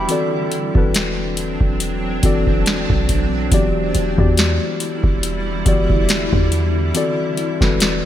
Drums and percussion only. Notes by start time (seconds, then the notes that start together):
0.09 closed hi-hat
0.52 closed hi-hat
0.75 kick
0.94 snare, closed hi-hat
1.37 closed hi-hat
1.60 kick
1.80 closed hi-hat
2.23 kick, closed hi-hat
2.47 kick
2.66 snare, closed hi-hat
2.90 kick
3.09 kick, closed hi-hat
3.52 kick, closed hi-hat
3.95 closed hi-hat
4.18 kick
4.38 snare, closed hi-hat
4.80 closed hi-hat
5.03 kick
5.23 closed hi-hat
5.66 kick, closed hi-hat
5.90 kick
6.09 snare, closed hi-hat
6.32 kick
6.52 closed hi-hat
6.95 closed hi-hat
7.37 closed hi-hat
7.61 kick, snare
7.80 snare, closed hi-hat